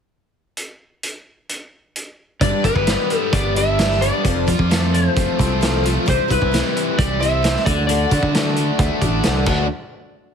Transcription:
0.57 closed hi-hat medium
1.03 closed hi-hat medium
1.49 closed hi-hat medium
1.96 closed hi-hat medium
2.41 2.51 G1 medium
2.41 3.57 G2 medium
2.41 2.65 G3 medium
2.41 2.65 D4 medium
2.41 2.66 G4 medium
2.41 2.63 B4 medium
2.41 2.65 D5 medium
2.41 kick loud
2.41 closed hi-hat medium
2.64 2.74 G1 medium
2.64 2.88 G4 soft
2.64 2.88 B4 soft
2.64 3.17 B4 medium
2.64 kick medium
2.64 closed hi-hat medium
2.69 2.87 D4 soft
2.75 2.95 G1 medium
2.75 kick medium
2.87 3.56 G3 medium
2.87 3.33 B3 medium
2.87 3.57 D4 medium
2.87 3.56 G4 medium
2.87 3.55 B4 medium
2.87 snare loud
2.87 closed hi-hat medium
3.10 3.78 G3 medium
3.10 closed hi-hat medium
3.17 3.36 A4 medium
3.33 4.10 G1 loud
3.33 4.01 B3 medium
3.33 3.57 D5 medium
3.33 kick loud
3.33 closed hi-hat medium
3.56 3.81 D4 soft
3.56 3.80 G4 soft
3.56 3.79 B4 medium
3.56 4.04 E5 loud
3.56 closed hi-hat medium
3.79 4.04 G3 medium
3.79 4.03 D4 medium
3.79 snare loud
3.79 closed hi-hat medium
3.83 4.03 G4 medium
3.83 4.00 B4 medium
3.91 snare soft
4.01 4.25 B3 medium
4.01 4.25 D4 soft
4.01 4.26 G4 soft
4.01 4.25 B4 soft
4.01 4.96 D5 medium
4.01 closed hi-hat medium
4.25 4.44 F1 medium
4.25 5.40 F2 medium
4.25 4.48 F3 medium
4.25 4.49 A3 medium
4.25 4.49 C4 medium
4.25 4.47 F4 medium
4.25 4.46 C5 medium
4.25 kick loud
4.25 closed hi-hat medium
4.47 4.58 F2 medium
4.47 4.70 C4 soft
4.47 4.71 F4 soft
4.47 4.71 C5 medium
4.47 kick medium
4.47 closed hi-hat medium
4.59 5.07 F2 medium
4.59 kick medium
4.70 5.39 A3 medium
4.70 5.40 C4 medium
4.70 5.39 F4 medium
4.70 5.38 C5 medium
4.70 snare loud
4.70 closed hi-hat medium
4.94 5.61 F3 medium
4.94 5.81 C5 medium
4.94 closed hi-hat medium
5.16 5.26 F1 medium
5.16 5.84 A3 medium
5.16 kick loud
5.16 closed hi-hat medium
5.39 5.96 C2 medium
5.39 5.61 C4 soft
5.39 5.62 F4 soft
5.39 5.62 C5 medium
5.39 kick medium
5.39 closed hi-hat medium
5.61 6.08 F3 medium
5.61 5.84 A3 medium
5.61 5.85 C4 medium
5.61 5.85 F4 medium
5.61 5.83 C5 medium
5.61 snare loud
5.61 closed hi-hat medium
5.84 6.08 A3 medium
5.84 6.06 C4 soft
5.84 6.07 F4 soft
5.84 6.07 C5 medium
5.84 closed hi-hat medium
6.06 6.17 C2 medium
6.06 6.30 C3 medium
6.06 6.30 E3 medium
6.06 6.30 G3 medium
6.06 6.30 C4 medium
6.06 6.28 E4 medium
6.06 6.27 C5 medium
6.06 6.32 C5 medium
6.06 kick loud
6.06 closed hi-hat medium
6.28 6.40 C2 loud
6.28 6.50 G3 soft
6.28 6.52 C4 soft
6.28 6.52 E4 soft
6.28 7.01 B4 medium
6.28 6.52 C5 medium
6.28 kick medium
6.28 closed hi-hat medium
6.42 6.61 C2 medium
6.42 kick medium
6.52 7.20 G3 medium
6.52 7.21 C4 medium
6.52 7.21 E4 medium
6.52 snare loud
6.52 closed hi-hat medium
6.75 7.42 E3 medium
6.75 closed hi-hat medium
6.98 7.55 C2 loud
6.98 7.66 G3 medium
6.98 7.20 D5 medium
6.98 kick loud
6.98 closed hi-hat medium
7.20 7.41 G3 soft
7.20 7.43 C4 soft
7.20 7.44 E4 medium
7.20 7.44 C5 medium
7.20 7.68 E5 loud
7.20 closed hi-hat medium
7.42 7.65 E3 medium
7.42 7.66 G3 soft
7.42 7.67 C4 medium
7.42 7.67 E4 medium
7.42 7.66 C5 medium
7.42 snare loud
7.42 closed hi-hat medium
7.56 snare soft
7.65 8.04 D2 loud
7.65 7.86 D3 medium
7.65 7.90 F#4 soft
7.65 7.86 D5 medium
7.65 7.89 D5 soft
7.65 kick loud
7.65 closed hi-hat medium
7.70 7.89 D4 soft
7.87 8.12 D3 medium
7.87 8.12 A3 medium
7.87 8.12 D4 medium
7.87 8.52 D5 medium
7.87 closed hi-hat medium
7.91 8.11 F#4 medium
7.91 8.10 D5 medium
8.11 8.21 D3 medium
8.11 8.35 D4 soft
8.11 8.35 F#4 soft
8.11 8.34 D5 medium
8.11 kick medium
8.11 closed hi-hat medium
8.23 8.70 D3 medium
8.23 kick medium
8.34 9.02 A3 medium
8.34 9.03 D4 medium
8.34 9.02 F#4 medium
8.34 9.00 D5 medium
8.34 snare loud
8.34 closed hi-hat medium
8.56 9.24 D3 medium
8.56 closed hi-hat medium
8.79 8.89 D2 medium
8.79 9.46 A3 medium
8.79 kick loud
8.79 closed hi-hat medium
9.01 9.21 A1 medium
9.01 9.24 D4 soft
9.01 9.25 F#4 medium
9.01 9.24 D5 medium
9.01 kick medium
9.01 closed hi-hat medium
9.23 9.46 C2 medium
9.23 9.44 D3 medium
9.23 9.47 A3 medium
9.23 9.47 D4 medium
9.23 9.47 F#4 medium
9.23 9.48 D5 medium
9.23 snare loud
9.23 closed hi-hat medium
9.46 9.68 D2 medium
9.46 9.65 D3 medium
9.46 9.65 F#3 medium
9.46 9.65 A3 medium
9.46 9.66 D4 medium
9.46 9.66 F#4 medium
9.46 9.66 D5 medium
9.46 kick loud
9.46 crash medium

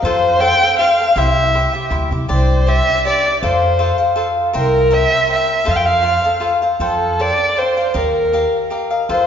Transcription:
0.03 0.51 F2 medium
0.03 0.39 F4 medium
0.03 0.39 A4 medium
0.03 0.42 C5 loud
0.03 0.41 C5 medium
0.03 0.41 F5 medium
0.40 0.60 F4 medium
0.40 0.61 A4 medium
0.40 0.61 C5 medium
0.40 0.61 F5 medium
0.40 0.78 G5 loud
0.62 0.78 A4 soft
0.62 0.78 C5 soft
0.62 0.79 F5 medium
0.79 0.98 F4 medium
0.79 0.98 A4 medium
0.79 0.99 C5 medium
0.79 1.19 F5 medium
0.79 0.98 F5 medium
0.99 1.16 A4 soft
0.99 1.16 C5 soft
0.99 1.16 F5 medium
1.16 1.65 C2 medium
1.16 1.52 E4 medium
1.16 1.53 G4 medium
1.16 1.54 C5 medium
1.16 1.54 E5 medium
1.16 1.92 E5 medium
1.54 1.73 E4 medium
1.54 1.73 G4 medium
1.54 1.73 C5 medium
1.54 1.72 E5 medium
1.73 1.90 G4 soft
1.73 1.90 C5 soft
1.73 1.91 E5 soft
1.90 2.09 D2 medium
1.90 2.11 E4 medium
1.90 2.11 G4 medium
1.90 2.11 C5 medium
1.90 2.10 E5 medium
2.11 2.27 C2 medium
2.11 2.28 G4 soft
2.11 2.28 C5 soft
2.11 2.29 E5 soft
2.28 2.79 C2 medium
2.28 2.65 D4 medium
2.28 2.66 G4 medium
2.28 2.67 C5 medium
2.28 2.67 D5 medium
2.34 2.70 C5 medium
2.67 3.04 D4 medium
2.67 3.04 G4 medium
2.67 3.05 C5 medium
2.67 3.05 D5 medium
2.67 3.05 E5 loud
3.05 3.25 D4 medium
3.05 3.25 G4 medium
3.05 3.25 C5 soft
3.05 3.24 D5 medium
3.05 3.40 D5 medium
3.25 3.42 G4 soft
3.25 3.43 C5 soft
3.25 3.42 D5 soft
3.43 3.91 F2 medium
3.43 3.78 F4 medium
3.43 3.78 A4 medium
3.43 4.13 C5 medium
3.43 3.79 C5 medium
3.43 3.79 F5 medium
3.79 3.99 F4 medium
3.79 3.98 A4 medium
3.79 3.97 C5 medium
3.79 3.97 F5 medium
3.98 4.15 A4 soft
3.98 4.15 C5 medium
3.98 4.16 F5 medium
4.16 4.53 F4 medium
4.16 4.53 A4 medium
4.16 4.54 C5 medium
4.16 4.54 F5 medium
4.53 5.04 C2 medium
4.53 4.89 A#4 medium
4.53 4.95 A#4 medium
4.53 4.91 C5 medium
4.53 4.90 E5 medium
4.53 4.91 G5 medium
4.91 5.11 A#4 medium
4.91 5.11 C5 medium
4.91 5.10 E5 medium
4.91 5.30 E5 loud
4.91 5.09 G5 medium
5.10 5.27 C5 soft
5.10 5.27 E5 soft
5.10 5.28 G5 soft
5.28 5.65 A#4 soft
5.28 5.65 C5 medium
5.28 5.66 E5 medium
5.28 5.66 G5 medium
5.33 5.72 E5 medium
5.65 6.17 F2 medium
5.65 6.02 F4 medium
5.65 6.02 A4 medium
5.65 6.02 C5 medium
5.65 6.03 F5 medium
5.71 5.78 F5 medium
5.76 5.87 G5 medium
5.86 6.45 F5 medium
6.02 6.24 F4 medium
6.02 6.24 A4 medium
6.02 6.24 C5 medium
6.02 6.23 F5 medium
6.24 6.40 A4 soft
6.24 6.40 C5 soft
6.24 6.41 F5 soft
6.40 6.62 F4 medium
6.40 6.62 A4 medium
6.40 6.62 C5 medium
6.40 6.61 F5 medium
6.62 6.79 A4 soft
6.62 6.80 C5 soft
6.62 6.80 F5 soft
6.80 7.30 F2 medium
6.80 7.18 A4 medium
6.80 7.19 C5 medium
6.80 7.19 F5 medium
6.80 7.20 G5 medium
6.85 7.22 A4 medium
7.19 7.55 A4 medium
7.19 7.55 C5 medium
7.19 7.60 D5 loud
7.19 7.56 F5 soft
7.19 7.56 G5 medium
7.56 7.77 A4 soft
7.56 7.77 C5 soft
7.56 7.98 C5 medium
7.56 7.76 F5 soft
7.56 7.75 G5 soft
7.77 7.93 C5 soft
7.77 7.94 F5 soft
7.77 7.95 G5 soft
7.94 8.44 D#2 medium
7.94 8.31 G4 medium
7.94 8.32 A#4 medium
7.94 8.72 A#4 medium
7.94 8.32 D#5 medium
7.94 8.33 F5 medium
8.33 8.69 G4 soft
8.33 8.70 A#4 soft
8.33 8.70 D#5 medium
8.33 8.71 F5 medium
8.70 8.91 G4 medium
8.70 8.91 A#4 medium
8.70 8.90 D#5 medium
8.70 8.89 F5 medium
8.91 9.09 A#4 soft
8.91 9.09 D#5 soft
8.91 9.09 F5 soft
9.09 9.27 F2 medium
9.09 9.27 F4 medium
9.09 9.27 A4 medium
9.09 9.27 C5 medium
9.09 9.27 F5 medium

